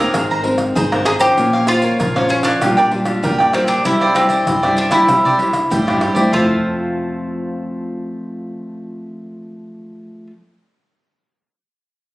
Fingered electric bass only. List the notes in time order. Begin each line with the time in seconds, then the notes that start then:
0.15 G#1
0.31 G#1
0.77 G#1
1.39 A#1
2.00 A#1
2.62 A#1
2.79 A#1
3.24 B1
3.86 C2
4.48 C2
5.09 C3
5.26 C2
5.71 A2
6.01 G2
6.33 F1